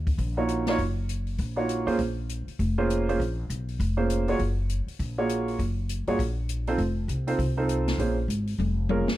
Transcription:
Already playing: upright bass D#2
0.07 kick, open hi-hat
0.18 upright bass A#1, kick, open hi-hat
0.37 grand piano A#3 D#4 F4 F#4 C#5
0.49 closed hi-hat
0.67 grand piano A#3 D#4 F4 F#4 C#5, snare, open hi-hat
0.78 upright bass F#1, kick, open hi-hat
1.09 closed hi-hat
1.27 open hi-hat
1.38 upright bass A#1, kick, open hi-hat
1.56 grand piano A#3 D#4 F4 F#4 C#5
1.69 closed hi-hat
1.87 upright bass F2, grand piano A#3 C#4 F4 G#4 C5, open hi-hat
1.98 upright bass A#1, kick, open hi-hat
2.29 closed hi-hat
2.48 muted upright bass stroke, open hi-hat
2.59 upright bass F1, kick, open hi-hat
2.78 grand piano A#3 C#4 F4 G#4 C5
2.90 closed hi-hat
3.09 grand piano A#3 C#4 F4 G#4 C5, open hi-hat
3.19 upright bass A#1, kick, open hi-hat
3.50 upright bass B1, closed hi-hat
3.68 open hi-hat
3.80 upright bass F1, kick, open hi-hat
3.97 grand piano A#3 C#4 F4 G#4 C5
4.10 closed hi-hat
4.28 grand piano A#3 F4 F#4 G#4 C#5, open hi-hat
4.39 upright bass F#1, kick, open hi-hat
4.69 closed hi-hat
4.87 muted upright bass stroke, open hi-hat
4.99 upright bass A#1, kick, open hi-hat
5.18 grand piano A#3 F4 F#4 G#4 C#5
5.29 closed hi-hat
5.48 open hi-hat
5.59 upright bass F#1, kick, open hi-hat
5.89 closed hi-hat
6.07 upright bass G1, grand piano A#3 F4 F#4 G#4 C#5, open hi-hat
6.19 upright bass A#1, kick, open hi-hat
6.49 closed hi-hat
6.67 grand piano C4 D#4 F4 A4 C5, open hi-hat
6.78 upright bass F1, kick, open hi-hat
7.08 upright bass C2, closed hi-hat
7.27 grand piano C4 D#4 F4 A4 C5, open hi-hat
7.38 upright bass C2, kick, open hi-hat
7.57 grand piano C4 D#4 F4 A4 C5
7.69 closed hi-hat
7.87 snare, open hi-hat
7.98 upright bass A#1, grand piano A#3 C#4 F4 G#4 C5, kick, open hi-hat
8.28 upright bass G#1, closed hi-hat
8.47 open hi-hat
8.58 upright bass F1, high tom
8.89 grand piano A#3 C#4 F4 G#4 A#4, high tom
9.08 snare

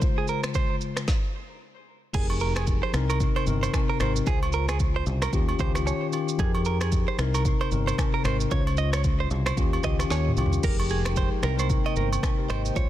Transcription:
0.00 tine electric piano C#3 G#3 F4 C5, kick, shaker
0.18 clean electric guitar G#4
0.28 clean electric guitar A#4, shaker
0.44 finger snap, cross-stick, shaker
0.54 clean electric guitar C5, kick, shaker
0.81 shaker
0.97 finger snap, cross-stick, shaker
1.08 kick, snare
2.13 fingered electric bass F1, tine electric piano F3 D#4 G4 G#4 A#4, clean electric guitar G#4, kick, crash, shaker
2.30 high agogo
2.40 clean electric guitar A#4, shaker
2.56 clean electric guitar G#4, finger snap, cross-stick, high agogo, shaker
2.67 kick, shaker
2.83 clean electric guitar C5
2.93 fingered electric bass C2, tine electric piano C3 C4 D#4 A#4, finger snap, cross-stick, shaker
3.10 clean electric guitar A#4, high agogo, shaker
3.20 kick, shaker
3.36 clean electric guitar C5, high agogo
3.46 fingered electric bass G1, tine electric piano C3 C4 D#4 A#4, shaker
3.63 clean electric guitar C5, high agogo, shaker
3.73 finger snap, kick, cross-stick, low woodblock, shaker
3.89 clean electric guitar A#4
3.99 fingered electric bass G#1, tine electric piano C3 C4 D#4 A#4, clean electric guitar C5, finger snap, cross-stick, high agogo, shaker
4.16 shaker
4.25 fingered electric bass C#2, tine electric piano C#3 C#4 F4, clean electric guitar G#4, kick, shaker
4.43 high agogo
4.53 clean electric guitar A#4, shaker
4.69 clean electric guitar G#4, finger snap, cross-stick, high agogo, shaker
4.79 kick, shaker
4.96 clean electric guitar C5
5.06 fingered electric bass C2, shaker
5.22 clean electric guitar A#4, finger snap, cross-stick, high agogo, shaker
5.32 fingered electric bass D#2, tine electric piano D#3 C#4 F4 G4, kick, shaker
5.49 high agogo
5.58 fingered electric bass C#2, tine electric piano D#3 C#4 F4 G4, clean electric guitar C5, kick, shaker
5.75 finger snap, cross-stick, high agogo, shaker
5.86 clean electric guitar C#5, low woodblock, shaker
6.11 tine electric piano D#3 C#4 F4 G4, high agogo, shaker
6.28 shaker
6.38 fingered electric bass F2, tine electric piano F3 D#4 G4 G#4 A#4, clean electric guitar G#4, kick, shaker
6.55 high agogo
6.65 clean electric guitar A#4, shaker
6.81 clean electric guitar G#4, finger snap, cross-stick, high agogo, shaker
6.92 kick, shaker
7.08 clean electric guitar C5
7.17 fingered electric bass C2, tine electric piano C3 C4 D#4 A#4, finger snap, cross-stick, shaker
7.35 clean electric guitar A#4, high agogo, shaker
7.45 kick, shaker
7.61 clean electric guitar C5, high agogo
7.71 fingered electric bass G1, tine electric piano C3 C4 D#4 A#4, shaker
7.87 clean electric guitar C5, high agogo, shaker
7.98 finger snap, kick, cross-stick, low woodblock, shaker
8.14 clean electric guitar A#4
8.23 fingered electric bass G#1, tine electric piano C3 C4 D#4 A#4, clean electric guitar C5, finger snap, cross-stick, high agogo, shaker
8.40 shaker
8.50 fingered electric bass C#2, tine electric piano C#3 C#4 F4 B4, clean electric guitar C#5, kick, shaker
8.59 tine electric piano C5
8.67 high agogo
8.77 clean electric guitar D#5, shaker
8.93 clean electric guitar C#5, finger snap, cross-stick, high agogo, shaker
9.04 kick, shaker
9.20 clean electric guitar C5
9.31 fingered electric bass C2, shaker
9.46 clean electric guitar C5, finger snap, cross-stick, high agogo, shaker
9.56 fingered electric bass D#2, tine electric piano D#3 C#4 F4 G4, kick, shaker
9.73 high agogo
9.83 fingered electric bass C#2, tine electric piano D#3 C#4 F4 G4, clean electric guitar D#5, finger snap, kick, cross-stick, shaker
9.99 finger snap, cross-stick, high agogo, shaker
10.10 fingered electric bass D#2, clean electric guitar C#5, snare, low woodblock, shaker
10.28 mid tom
10.36 fingered electric bass C2, tine electric piano D#3 C#4 F4 G4, high agogo, shaker
10.46 floor tom
10.53 shaker
10.62 fingered electric bass F1, tine electric piano F3 D#4 G4 G#4 A#4, glass harmonica G#3 D#4 A#4 G5, clean electric guitar A#4, kick, crash, shaker
10.80 high agogo
10.89 clean electric guitar G#4, shaker
11.05 finger snap, cross-stick, high agogo, shaker
11.16 clean electric guitar C5, kick, shaker
11.42 fingered electric bass C2, tine electric piano C3 C4 D#4 A#4, glass harmonica A#3 C5, clean electric guitar A#4, finger snap, cross-stick, shaker
11.59 clean electric guitar C5, high agogo, shaker
11.70 kick, shaker
11.86 clean electric guitar D#5, high agogo
11.96 fingered electric bass G1, clean electric guitar A#4, shaker
12.13 high agogo, shaker
12.23 finger snap, kick, cross-stick, low woodblock, shaker
12.38 tine electric piano G4 A#4
12.49 fingered electric bass G#1, clean electric guitar C5, tine electric piano D#5, finger snap, cross-stick, high agogo, shaker
12.65 tine electric piano C5, shaker
12.75 fingered electric bass C#2, tine electric piano C#3 C#4 F4 C5, glass harmonica G#3 C#4 F4, clean electric guitar C#5, kick, shaker

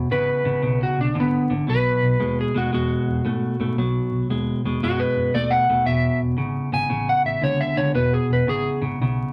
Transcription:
0.10 fingered electric bass G#1, clean electric guitar E2 C#3, electric slide guitar B4
0.44 fingered electric bass G#1, clean electric guitar E2 C#3
0.62 fingered electric bass B1, clean electric guitar E2 C#3
0.83 electric slide guitar F#4
0.98 fingered electric bass B1, electric slide guitar D4
1.14 fingered electric bass G#1, clean electric guitar E2 D3
1.20 electric slide guitar B3
1.50 fingered electric bass G#1, clean electric guitar E2 D3
1.67 fingered electric bass B1, clean electric guitar B2 F#3, electric slide guitar B4
2.02 fingered electric bass B1
2.20 fingered electric bass D#2, clean electric guitar B2 G#3
2.41 electric slide guitar G#4
2.54 fingered electric bass D#2, clean electric guitar B2 G#3, electric slide guitar F#4
2.72 fingered electric bass E2, clean electric guitar B2 G#3, electric slide guitar F#4
3.07 fingered electric bass E2
3.25 fingered electric bass G#2, clean electric guitar B2 A3
3.59 fingered electric bass G#2, clean electric guitar B2 A3
3.77 fingered electric bass B1, clean electric guitar B2 F#3
4.11 fingered electric bass B1
4.29 fingered electric bass D#2, clean electric guitar B2 G#3
4.64 fingered electric bass D#2, clean electric guitar B2 G#3
4.83 fingered electric bass F#2, clean electric guitar B2 G#3, electric slide guitar F#4
5.00 electric slide guitar B4
5.16 fingered electric bass F#2
5.34 fingered electric bass D#2, clean electric guitar B2 A3, electric slide guitar D5
5.51 electric slide guitar F#5
5.68 fingered electric bass D#2, clean electric guitar B2 A3
5.86 fingered electric bass E1, clean electric guitar E2 B2, electric slide guitar E5
6.20 fingered electric bass E1
6.37 fingered electric bass G#1, clean electric guitar E2 C#3
6.72 fingered electric bass G#1, clean electric guitar E2 C#3, electric slide guitar G#5
6.89 fingered electric bass A1, clean electric guitar E2 C#3
7.09 electric slide guitar F#5
7.25 fingered electric bass A1, electric slide guitar E5
7.42 fingered electric bass C#2, clean electric guitar E2 D3, electric slide guitar C#5
7.61 electric slide guitar E5
7.76 fingered electric bass C#2, clean electric guitar E2 D3, electric slide guitar C#5
7.94 fingered electric bass E1, clean electric guitar E2 B2, electric slide guitar B4
8.13 electric slide guitar G#4
8.29 fingered electric bass E1, electric slide guitar B4
8.47 fingered electric bass G#1, clean electric guitar E2 C#3, electric slide guitar G#4
8.81 fingered electric bass G#1, clean electric guitar E2 C#3
9.00 fingered electric bass B1, clean electric guitar E2 C#3

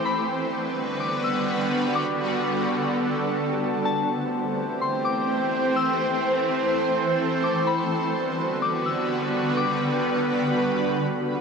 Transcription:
0.05 ambient pad D3 G3 B3 F#4 B4, synth bell B5
1.00 synth bell D6
1.24 synth bell E6
1.96 ambient pad A4, synth bell D6
3.85 ambient pad E3 A3 C4 G4 C5, synth bell A5
4.81 synth bell C6
5.05 synth bell D6
5.76 ambient pad A4, synth bell E6
7.44 synth bell D6
7.67 ambient pad D3 G3 B3 F#4 B4, synth bell B5
8.62 synth bell D6
8.86 synth bell E6
9.57 synth bell D6

